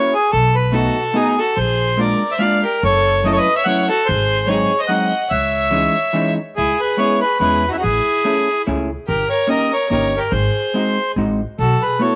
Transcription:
Already playing: hollow-body jazz guitar A#3 C#4 E4 F#4, accordion C#5
0.14 accordion G#4
0.32 upright bass B1, accordion A4
0.55 accordion B4
0.72 hollow-body jazz guitar A3 B3 D#4 F#4, violin F#4, accordion A4
1.14 hollow-body jazz guitar A3 B3 D#4 F#4, violin D#4, accordion G#4
1.39 violin F#4, accordion A4
1.57 upright bass A#1, violin G#4, accordion C5
1.97 hollow-body jazz guitar G#3 A#3 D4 F4, violin A#4, accordion D5
2.32 violin C5, accordion E5
2.39 hollow-body jazz guitar G#3 A#3 D4 F4, violin D5, accordion F5
2.63 violin G4, accordion A#4
2.83 upright bass F#1, violin A4, accordion C#5
3.23 hollow-body jazz guitar F#3 A3 C#4 E4, violin A4, accordion D#5
3.31 violin A4, accordion C#5
3.37 violin B4, accordion D#5
3.56 violin C#5, accordion E5
3.65 hollow-body jazz guitar F#3 A3 C#4 E4, violin C#5, accordion F#5
3.89 violin F#4, accordion A4
4.06 upright bass G#1, violin G#4, accordion C5
4.47 hollow-body jazz guitar F#3 G#3 C4 D#4, violin G#4, accordion C#5
4.80 violin C5, accordion D#5
4.88 hollow-body jazz guitar F#3 G#3 C4 D#4, violin D#5, accordion F#5
5.30 upright bass C#2, violin C#5, accordion E5
5.71 hollow-body jazz guitar E3 G#3 C#4 D#4
6.13 hollow-body jazz guitar E3 G#3 C#4 D#4
6.57 upright bass C#2, violin E4, accordion G#4
6.80 violin G#4, accordion B4
6.97 hollow-body jazz guitar G#3 B3 C#4 E4, violin G#4, accordion C#5
7.21 violin G#4, accordion B4
7.40 upright bass E2, hollow-body jazz guitar G#3 B3 C#4 E4, violin G#4, accordion B4
7.68 violin D#4, accordion F#4
7.72 violin C#4, accordion E4
7.78 violin D#4, accordion F#4
7.83 upright bass A1, violin E4, accordion G#4
8.24 hollow-body jazz guitar A3 C#4 E4 G#4
8.67 upright bass C#2, hollow-body jazz guitar A3 C#4 E4 G#4
9.07 upright bass G1, violin G4, accordion A#4
9.30 violin A#4, accordion C#5
9.47 hollow-body jazz guitar A#3 C#4 D#4 G4, violin A#4, accordion D#5
9.71 violin A#4, accordion C#5
9.89 upright bass G1, hollow-body jazz guitar A#3 C#4 D#4 G4, violin A#4, accordion C#5
10.17 violin G4, accordion A#4
10.31 upright bass G#1, violin G#4, accordion C5
10.74 hollow-body jazz guitar G#3 C4 D#4 F#4
11.16 upright bass A1, hollow-body jazz guitar G#3 C4 D#4 F#4
11.59 upright bass B1, violin F#4, accordion A4
11.82 violin G#4, accordion B4
11.99 hollow-body jazz guitar A3 B3 E4 F#4, violin A4, accordion C#5

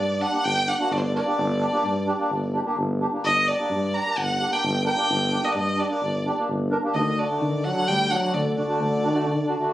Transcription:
Already playing: tuba G2, violin D5
0.21 accordion D4 G4, violin F#5
0.32 accordion A#3 D4 G4
0.44 tuba G1, violin G5
0.67 accordion D4 G4, violin F#5
0.79 accordion A#3 D4 F#4
0.91 tuba G1, violin D5
0.97 violin C5
1.02 violin D5
1.14 accordion D4 A#4, violin D5
1.25 accordion A#3 D4 G4
1.38 tuba G1
1.60 accordion D4 G4
1.72 accordion A#3 D4 G4
1.84 tuba G2
2.07 accordion D4 G4
2.19 accordion A#3 D4 G4
2.30 tuba G1
2.54 accordion D4 G4
2.65 accordion A#3 D4 G4
2.77 tuba G1
3.01 accordion D4 G4
3.13 accordion A#3 D4 G4
3.24 tuba G1, violin D#5
3.48 accordion D4 G4, violin D5
3.59 accordion A#3 D4 G4
3.70 tuba G2
3.94 accordion D4 G4, violin A#5
4.05 accordion A#3 D4 G4
4.16 tuba G1, violin F#5
4.40 accordion D4 G4
4.50 accordion A#3 D4 G4, violin G5
4.63 tuba G1
4.84 accordion D4 A#4, violin G5
4.95 accordion A#3 D4 G4
5.09 tuba G1
5.31 accordion D4 G4
5.42 accordion A#3 D4 G4, violin D#5
5.52 tuba G2, violin D5
5.58 violin D#5
5.77 accordion D4 G4, violin D5
5.90 accordion A#3 D4 G4, violin D5
6.02 tuba G1
6.25 accordion D4 G4
6.37 accordion A#3 D4 G4
6.48 tuba G1
6.70 accordion D4 A#4
6.84 accordion A#3 D4 G4
6.94 tuba D2, trombone D#3, violin D#5
7.18 trombone D3, accordion D4 F#4, violin D5
7.29 accordion A3 D4 F#4
7.41 tuba D3, trombone D#3
7.64 trombone F#3, accordion D4 F#4, violin F#5
7.75 accordion A3 D4 F#4
7.88 tuba D2, trombone G3, violin G5
8.09 trombone F#3, accordion D4 F#4, violin F#5
8.22 accordion A3 D4 F#4
8.33 tuba D2, trombone D3, violin D5
8.57 trombone D3, accordion D4 F#4, violin D5
8.67 accordion A3 D4 F#4
8.80 tuba D2
9.02 accordion D4 F#4
9.13 accordion A3 D4 F#4
9.26 tuba D3
9.47 accordion D4 F#4
9.59 accordion A3 D4 F#4

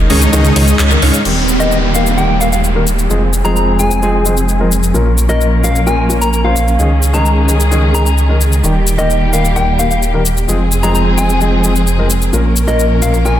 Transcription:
Already playing: string section C#3 D#3 G#3 D#4
0.09 detuned saw bass C#2, grand piano D#3 G#3 C#4 G#4, supersaw synth G#3 C#4 D#4 C#5 D#5, open hi-hat
0.21 closed hi-hat, cabasa
0.32 detuned saw bass C#2, grand piano D#3 G#3 C#4 G#4, supersaw synth G#3 C#4 D#4 C#5 D#5, closed hi-hat, cabasa
0.45 closed hi-hat, cabasa
0.56 detuned saw bass C#2, grand piano D#3 G#3 C#4 G#4, supersaw synth G#3 C#4 D#4 C#5 D#5, open hi-hat
0.68 closed hi-hat, cabasa
0.79 detuned saw bass C#2, supersaw synth G#3 C#4 D#4 C#5 D#5, clap, closed hi-hat, cabasa
0.90 grand piano D#3 G#3 C#4 A#4, closed hi-hat, cabasa
1.02 detuned saw bass C#2, supersaw synth G#3 C#4 D#4 C#5 F5, open hi-hat
1.14 closed hi-hat, cabasa
1.25 detuned saw bass D#1, grand piano D#3 G3 A#3 G4, string section D#3 G3 A#3 G4, crash, downlifter, cabasa
1.49 cabasa
1.59 grand piano D#3 G3 A#3 G4, soft synth lead D#5, cabasa
1.72 cabasa
1.94 grand piano D#3 G3 A#3 G4, soft synth lead F5, cabasa
2.06 cabasa
2.17 grand piano D#3 G3 A#3 G4, soft synth lead G5, cabasa
2.40 grand piano D#3 G3 A#3 G4, soft synth lead F5, cabasa
2.52 soft synth lead F5, cabasa
2.64 cabasa
2.75 grand piano D#3 G3 A#3 A#4
2.87 cabasa
2.99 cabasa
3.09 detuned saw bass F1, grand piano F3 G#3 C4 G#4, string section F3 G#3 C4 G#4, cabasa
3.33 cabasa
3.44 grand piano F3 G#3 C4 G#4, soft synth lead A#5, cabasa
3.56 soft synth lead A#5, cabasa
3.79 grand piano F3 G#3 C4 G#4, soft synth lead G#5, cabasa
3.91 cabasa
4.02 grand piano F3 G#3 C4 G#4, cabasa
4.25 grand piano F3 G#3 C4 G#4, cabasa
4.37 cabasa
4.49 cabasa
4.59 grand piano F3 G#3 C4 A#4
4.72 cabasa
4.83 cabasa
4.94 detuned saw bass A#1, grand piano A#2 F3 A#3 C#4 A#4, string section A#3 C#4 A#4, cabasa
5.18 cabasa
5.29 grand piano A#2 F3 A#3 C#4 A#4, soft synth lead D#5, cabasa
5.41 cabasa
5.63 grand piano A#2 F3 A#3 C#4 A#4, soft synth lead F5, cabasa
5.76 cabasa
5.86 grand piano A#2 F3 A#3 C#4 A#4, soft synth lead G#5, cabasa
6.09 grand piano A#2 F3 A#3 C#4 A#4, cabasa
6.21 soft synth lead A#5, cabasa
6.33 soft synth lead A#5, cabasa
6.44 grand piano A#2 F3 A#3 C#4 C5, soft synth lead F5
6.56 cabasa
6.68 cabasa
6.79 detuned saw bass C#2, grand piano D#3 G#3 C#4 G#4, string section D#3 G#3 G#4, cabasa
7.03 cabasa
7.13 grand piano D#3 G#3 C#4 G#4, soft synth lead A#5, cabasa
7.26 cabasa
7.48 grand piano D#3 G#3 C#4 G#4, cabasa
7.60 cabasa
7.71 grand piano D#3 G#3 C#4 G#4, cabasa
7.94 grand piano D#3 G#3 C#4 G#4, soft synth lead A#5, cabasa
8.06 soft synth lead A#5, cabasa
8.18 cabasa
8.29 grand piano D#3 G#3 C#4 A#4
8.41 cabasa
8.53 cabasa
8.63 detuned saw bass D#1, grand piano D#3 G3 A#3 G4, string section G3 A#3 G4, cabasa
8.87 cabasa
8.98 grand piano D#3 G3 A#3 G4, soft synth lead D#5, cabasa
9.10 cabasa
9.33 grand piano D#3 G3 A#3 G4, soft synth lead F5, cabasa
9.45 cabasa
9.56 grand piano D#3 G3 A#3 G4, soft synth lead G5, cabasa
9.79 grand piano D#3 G3 A#3 G4, soft synth lead F5, cabasa
9.91 soft synth lead F5, cabasa
10.03 cabasa
10.13 grand piano D#3 G3 A#3 A#4
10.26 cabasa
10.37 cabasa
10.48 detuned saw bass F1, grand piano F3 G#3 C4 G#4, string section F3 G#3 C4 G#4, cabasa
10.72 cabasa
10.82 grand piano F3 G#3 C4 G#4, soft synth lead A#5, cabasa
10.95 soft synth lead A#5, cabasa
11.17 grand piano F3 G#3 C4 G#4, soft synth lead G#5, cabasa
11.30 cabasa
11.40 grand piano F3 G#3 C4 G#4, cabasa
11.63 grand piano F3 G#3 C4 G#4, cabasa
11.76 cabasa
11.87 cabasa
11.98 grand piano F3 G#3 C4 A#4
12.10 cabasa
12.22 cabasa
12.33 detuned saw bass A#1, grand piano A#2 F3 A#3 C#4 A#4, string section F3 A#3 C#4 A#4, cabasa
12.56 cabasa
12.67 grand piano A#2 F3 A#3 C#4 A#4, soft synth lead D#5, cabasa
12.80 cabasa
13.02 grand piano A#2 F3 A#3 C#4 A#4, soft synth lead F5, cabasa
13.14 cabasa
13.25 grand piano A#2 F3 A#3 C#4 A#4, soft synth lead G#5, cabasa

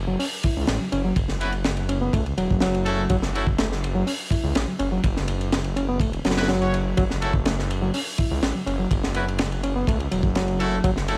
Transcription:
Already playing: detuned saw bass F#1
0.08 reed electric piano F#3
0.19 reed electric piano C#4, open hi-hat
0.43 reed electric piano E4, kick, ride
0.56 detuned saw bass C#2
0.67 detuned saw bass A1, reed electric piano C#4, snare, ride
0.80 reed electric piano F#3
0.92 detuned saw bass F#1, reed electric piano C#4, ride
1.05 reed electric piano F#3
1.16 detuned saw bass F#1, kick, ride
1.29 snare
1.41 horn section B3 C#4 E4 F#4 B4, ride
1.52 ride
1.64 snare, ride
1.77 ride
1.89 reed electric piano C#4, ride
2.01 reed electric piano B3
2.13 detuned saw bass C#2, reed electric piano A3, kick, ride
2.26 ride
2.37 detuned saw bass E1, reed electric piano F#3, ride
2.51 detuned saw bass F#1, kick
2.60 reed electric piano F#3, snare, ride
2.74 ride
2.86 horn section A3 C#4 E4 F#4 A4, ride
3.10 detuned saw bass F#1, reed electric piano F#3, kick, ride
3.22 snare
3.34 horn section A3 C#4 E4 F#4 A4, ride
3.47 kick
3.58 reed electric piano A3, snare, ride
3.72 snare
3.84 ride
3.95 reed electric piano F#3
4.07 reed electric piano C#4, open hi-hat
4.31 reed electric piano E4, kick, ride
4.44 detuned saw bass C#2
4.55 detuned saw bass A1, reed electric piano C#4, snare, ride
4.68 reed electric piano F#3
4.79 detuned saw bass F#1, reed electric piano C#4, ride
4.92 reed electric piano F#3
5.04 detuned saw bass F#1, kick, ride
5.17 snare
5.28 ride
5.41 ride
5.52 snare, ride
5.64 ride
5.76 reed electric piano C#4, ride
5.88 reed electric piano B3
6.00 detuned saw bass E1, reed electric piano A3, kick, ride
6.13 ride
6.25 detuned saw bass F#1, reed electric piano F#3, snare, ride
6.31 snare, ride
6.37 horn section B3 C#4 E4 F#4 B4, snare, ride
6.42 snare, ride
6.48 reed electric piano F#3, snare, ride
6.61 horn section C#4 E4 F#4 C#5, ride
6.74 ride
6.97 detuned saw bass F#1, reed electric piano F#3, kick, ride
7.10 snare
7.21 horn section A3 C#4 E4 F#4 A4, ride
7.33 kick
7.45 reed electric piano A3, snare, ride
7.59 snare
7.70 ride
7.82 reed electric piano F#3
7.94 reed electric piano C#4, open hi-hat
8.18 reed electric piano E4, kick, ride
8.31 detuned saw bass C#2
8.42 detuned saw bass A1, reed electric piano C#4, snare, ride
8.55 reed electric piano F#3
8.66 detuned saw bass F#1, reed electric piano C#4, ride
8.79 reed electric piano F#3
8.91 detuned saw bass F#1, kick, ride
9.03 snare
9.14 horn section B3 C#4 E4 F#4 B4, ride
9.28 ride
9.38 snare, ride
9.52 ride
9.63 reed electric piano C#4, ride
9.76 reed electric piano B3
9.87 detuned saw bass C#2, reed electric piano A3, kick, ride
10.00 ride
10.12 detuned saw bass E1, reed electric piano F#3, ride
10.23 detuned saw bass F#1, kick
10.35 reed electric piano F#3, snare, ride
10.48 ride
10.60 horn section A3 C#4 E4 F#4 A4, ride
10.84 detuned saw bass F#1, reed electric piano F#3, kick, ride
10.96 snare
11.08 horn section A3 C#4 E4 F#4 A4, ride

